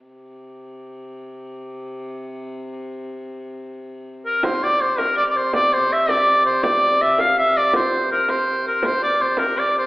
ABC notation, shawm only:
X:1
M:6/8
L:1/16
Q:3/8=109
K:Cmix
V:1 name="Shawm"
z12 | z12 | z12 | z8 z2 B2 |
c2 d2 c2 B2 d3/2 d/2 c2 | d2 c2 e2 d4 c2 | d4 e2 f2 e2 d2 | c4 B2 c4 B2 |
c2 d2 c2 B2 d2 c2 |]